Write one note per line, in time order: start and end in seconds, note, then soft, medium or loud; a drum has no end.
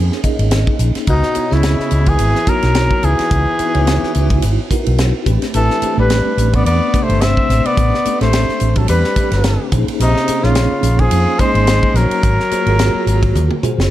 0.00 0.22 F3 medium
0.00 0.20 A#3 medium
0.00 0.19 C#4 medium
0.00 0.19 D#4 medium
0.00 0.20 G#4 medium
0.00 0.21 G#4 loud
0.00 0.19 A#4 medium
0.12 snare soft
0.24 1.08 A#3 medium
0.24 1.08 C#4 medium
0.24 1.08 D#4 medium
0.24 1.08 G#4 medium
0.24 1.08 D#5 medium
0.24 muted fretless electric bass stroke soft
0.24 kick medium
0.24 hi-hat pedal medium
0.24 ride medium
0.39 0.64 G#1 medium
0.39 ride medium
0.51 snare medium
0.51 hi-hat pedal medium
0.51 ride medium
0.67 kick medium
0.79 0.93 A#1 medium
0.79 hi-hat pedal medium
0.79 ride soft
0.95 snare soft
0.95 ride medium
1.07 1.21 C#2 medium
1.07 1.53 B2 medium
1.07 1.55 D#4 medium
1.07 kick loud
1.07 hi-hat pedal medium
1.07 ride medium
1.23 snare soft
1.35 1.50 B3 medium
1.35 1.50 D#4 medium
1.35 1.50 E4 medium
1.35 1.50 F#4 medium
1.35 1.50 C#5 medium
1.35 muted fretless electric bass stroke soft
1.35 hi-hat pedal medium
1.35 ride medium
1.51 1.76 C#2 medium
1.51 2.09 C#3 medium
1.51 2.42 B3 medium
1.51 2.43 E4 medium
1.51 2.10 E4 medium
1.51 2.43 F#4 medium
1.51 2.42 D#5 medium
1.51 2.43 E5 medium
1.51 snare soft
1.63 snare medium
1.63 hi-hat pedal medium
1.63 ride medium
1.79 muted fretless electric bass stroke soft
1.79 snare soft
1.91 2.16 C#2 medium
1.91 hi-hat pedal medium
1.91 ride medium
2.06 2.50 E3 medium
2.06 2.50 G#4 medium
2.06 kick medium
2.06 ride medium
2.19 2.33 G#1 medium
2.19 hi-hat pedal medium
2.19 ride medium
2.35 snare soft
2.47 3.06 F#3 medium
2.47 3.54 B3 medium
2.47 3.54 D#4 medium
2.47 3.53 E4 medium
2.47 3.54 F#4 medium
2.47 3.06 A#4 loud
2.47 3.54 C#5 medium
2.47 muted fretless electric bass stroke soft
2.47 kick medium
2.47 hi-hat pedal medium
2.47 ride medium
2.63 2.88 B1 medium
2.63 snare soft
2.63 ride medium
2.75 snare medium
2.75 hi-hat pedal medium
2.75 ride medium
2.91 kick medium
3.03 3.17 C#2 medium
3.03 4.71 E3 medium
3.03 4.71 G#4 medium
3.03 hi-hat pedal medium
3.03 ride medium
3.19 muted fretless electric bass stroke soft
3.19 snare soft
3.19 ride medium
3.31 3.45 C#2 medium
3.31 kick loud
3.31 hi-hat pedal medium
3.31 ride medium
3.59 3.73 B3 medium
3.59 3.73 D#4 medium
3.59 3.73 E4 medium
3.59 3.73 F#4 medium
3.59 3.74 B4 medium
3.59 muted fretless electric bass stroke soft
3.59 hi-hat pedal medium
3.59 ride medium
3.74 3.99 C#2 medium
3.74 4.66 B3 medium
3.74 4.66 D#4 medium
3.74 4.66 E4 medium
3.74 4.66 F#4 medium
3.74 4.66 C#5 medium
3.74 ride soft
3.87 snare loud
3.87 hi-hat pedal medium
3.87 ride medium
4.03 muted fretless electric bass stroke soft
4.03 snare soft
4.15 4.39 C#2 medium
4.15 hi-hat pedal medium
4.15 ride medium
4.30 kick medium
4.30 ride medium
4.42 4.56 G#1 medium
4.42 hi-hat pedal medium
4.42 ride medium
4.71 5.26 B3 medium
4.71 5.26 D#4 medium
4.71 5.26 E4 medium
4.71 5.26 F#4 medium
4.71 5.26 A#4 medium
4.71 muted fretless electric bass stroke soft
4.71 kick medium
4.71 hi-hat pedal medium
4.71 ride medium
4.86 5.11 B1 medium
4.86 ride medium
4.98 snare medium
4.98 hi-hat pedal medium
4.98 ride medium
5.26 5.40 A1 loud
5.26 5.79 A3 medium
5.26 5.79 C4 medium
5.26 5.79 D4 medium
5.26 5.79 G4 medium
5.26 5.79 B4 medium
5.26 kick medium
5.26 hi-hat pedal medium
5.26 ride medium
5.42 snare soft
5.42 ride medium
5.54 5.68 A1 medium
5.54 5.95 E3 medium
5.54 5.95 A4 medium
5.54 hi-hat pedal medium
5.54 ride medium
5.70 snare soft
5.82 5.97 A3 medium
5.82 5.97 C4 medium
5.82 5.97 D4 medium
5.82 5.97 G4 medium
5.82 5.97 C5 medium
5.82 muted fretless electric bass stroke soft
5.82 hi-hat pedal medium
5.82 ride medium
5.97 6.22 A1 medium
5.97 6.57 G3 medium
5.97 6.89 A3 medium
5.97 6.89 C4 medium
5.97 6.89 D4 medium
5.97 6.89 G4 medium
5.97 6.89 B4 medium
5.97 6.57 B4 medium
6.10 snare medium
6.10 hi-hat pedal medium
6.10 ride medium
6.25 muted fretless electric bass stroke soft
6.37 6.62 A1 medium
6.37 hi-hat pedal medium
6.37 ride medium
6.53 6.66 B3 medium
6.53 6.65 D5 medium
6.53 kick medium
6.53 ride medium
6.65 6.79 E2 medium
6.65 7.06 B3 medium
6.65 7.04 D5 medium
6.65 hi-hat pedal medium
6.65 ride medium
6.94 8.00 C3 medium
6.94 8.00 A3 medium
6.94 8.00 D4 medium
6.94 8.00 G4 medium
6.94 8.00 B4 medium
6.94 muted fretless electric bass stroke soft
6.94 kick medium
6.94 hi-hat pedal medium
6.94 ride medium
7.03 7.25 A3 medium
7.03 7.22 C5 medium
7.09 7.33 G1 medium
7.09 ride medium
7.21 7.68 C4 medium
7.21 7.67 E5 medium
7.21 snare medium
7.21 hi-hat pedal medium
7.21 ride medium
7.37 kick medium
7.50 7.63 A1 medium
7.50 snare soft
7.50 hi-hat pedal medium
7.50 ride medium
7.65 8.21 B3 medium
7.65 8.21 D5 medium
7.65 muted fretless electric bass stroke soft
7.65 ride medium
7.77 7.91 A1 medium
7.77 kick loud
7.77 hi-hat pedal medium
7.77 ride medium
7.94 snare soft
8.05 8.20 A3 medium
8.05 8.20 C4 medium
8.05 8.20 D4 medium
8.05 8.20 G4 medium
8.05 8.20 B4 medium
8.05 muted fretless electric bass stroke soft
8.05 hi-hat pedal medium
8.05 ride medium
8.21 8.45 A1 medium
8.21 9.12 A3 medium
8.21 8.79 A3 medium
8.21 9.12 C4 medium
8.21 9.12 D4 medium
8.21 9.12 G4 medium
8.21 9.12 C5 medium
8.21 8.79 C5 medium
8.21 snare soft
8.21 ride soft
8.33 snare loud
8.33 hi-hat pedal medium
8.33 ride medium
8.49 snare soft
8.60 8.85 A1 medium
8.60 hi-hat pedal medium
8.60 ride medium
8.76 8.89 F#3 medium
8.76 8.89 A4 medium
8.76 kick medium
8.76 ride medium
8.88 9.02 E2 medium
8.88 9.69 G3 medium
8.88 9.69 B4 medium
8.88 hi-hat pedal medium
8.88 ride medium
9.04 snare soft
9.16 9.72 A3 medium
9.16 9.73 C4 medium
9.16 9.72 D4 medium
9.16 9.73 G4 medium
9.16 9.73 B4 medium
9.16 muted fretless electric bass stroke soft
9.16 kick medium
9.16 hi-hat pedal medium
9.16 ride medium
9.32 9.56 G1 medium
9.32 snare soft
9.32 ride medium
9.44 snare loud
9.44 hi-hat pedal medium
9.44 ride medium
9.72 9.86 A#1 loud
9.72 10.25 A#3 medium
9.72 10.25 C#4 medium
9.72 10.26 D#4 medium
9.72 10.26 G#4 medium
9.72 10.26 C5 medium
9.72 kick loud
9.72 hi-hat pedal medium
9.72 ride medium
9.88 muted fretless electric bass stroke soft
9.88 ride medium
9.99 10.14 A#1 medium
9.99 10.47 C3 medium
9.99 10.45 D#4 loud
9.99 hi-hat pedal medium
9.99 ride medium
10.16 snare soft
10.27 10.43 A#3 medium
10.27 10.43 C#4 medium
10.27 10.42 D#4 medium
10.27 10.43 G#4 medium
10.27 10.43 C5 medium
10.27 muted fretless electric bass stroke soft
10.27 hi-hat pedal medium
10.27 ride medium
10.44 10.68 A#1 medium
10.44 11.03 C#3 medium
10.44 11.35 A#3 medium
10.44 11.35 C#4 medium
10.44 11.35 D#4 medium
10.44 11.01 F4 medium
10.44 11.35 G#4 medium
10.44 11.35 C#5 medium
10.44 snare soft
10.55 snare loud
10.55 hi-hat pedal medium
10.55 ride medium
10.83 11.08 A#1 medium
10.83 hi-hat pedal medium
10.83 ride medium
10.99 11.43 F3 medium
10.99 11.41 G#4 medium
10.99 kick medium
10.99 ride medium
11.11 11.25 F2 medium
11.11 hi-hat pedal medium
11.11 ride medium
11.39 11.99 G#3 medium
11.39 12.23 A#3 medium
11.39 12.23 C#4 medium
11.39 12.23 D#4 medium
11.39 12.23 G#4 medium
11.39 11.97 C5 medium
11.39 12.23 C5 medium
11.39 muted fretless electric bass stroke soft
11.39 kick medium
11.39 hi-hat pedal medium
11.39 ride medium
11.54 11.79 G#1 medium
11.54 ride medium
11.67 snare loud
11.67 hi-hat pedal medium
11.67 ride medium
11.83 kick medium
11.94 12.08 A#1 medium
11.94 13.63 F#3 medium
11.94 13.63 A#4 medium
11.94 snare soft
11.94 hi-hat pedal medium
11.94 ride soft
12.11 muted fretless electric bass stroke soft
12.11 ride medium
12.23 12.37 G#1 medium
12.23 kick medium
12.23 hi-hat pedal medium
12.23 ride medium
12.40 snare soft
12.51 12.66 A#3 medium
12.51 12.66 F4 medium
12.51 12.66 F#4 medium
12.51 12.66 G#4 medium
12.51 12.66 C5 medium
12.51 muted fretless electric bass stroke soft
12.51 hi-hat pedal medium
12.51 ride medium
12.66 12.91 G#1 medium
12.66 13.58 A#3 medium
12.66 13.59 F4 medium
12.66 13.59 F#4 medium
12.66 13.59 G#4 medium
12.66 13.59 A#4 medium
12.66 ride soft
12.79 snare loud
12.79 hi-hat pedal medium
12.79 ride medium
12.95 muted fretless electric bass stroke soft
13.06 13.31 G#1 medium
13.06 hi-hat pedal medium
13.06 ride medium
13.23 kick medium
13.23 ride medium
13.35 13.49 D#2 medium
13.35 hi-hat pedal medium
13.35 high tom medium
13.51 high tom medium
13.63 13.90 A#3 medium
13.63 13.90 F4 medium
13.63 13.90 F#4 medium
13.63 13.90 G#4 medium
13.63 13.90 C5 medium
13.63 muted fretless electric bass stroke soft
13.63 hi-hat pedal medium
13.63 mid tom medium
13.78 13.90 F#1 medium
13.78 snare medium